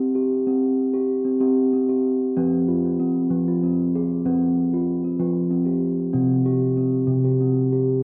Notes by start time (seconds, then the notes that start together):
Already playing: C4
0.15 G4
0.47 C4
0.94 G4
1.25 C4
1.41 C4 G4
1.73 C4
1.89 G4
2.37 F3 C4
2.68 F4
2.99 C4
3.30 F3
3.48 F4
3.63 C4
3.95 G#4
4.25 F3 C4
4.73 F4
5.04 C4
5.20 F3 F4
5.51 C4
5.66 G4
6.13 C3 C4
6.46 G4
6.77 C4
7.07 C3
7.24 G4
7.41 C4
7.72 G4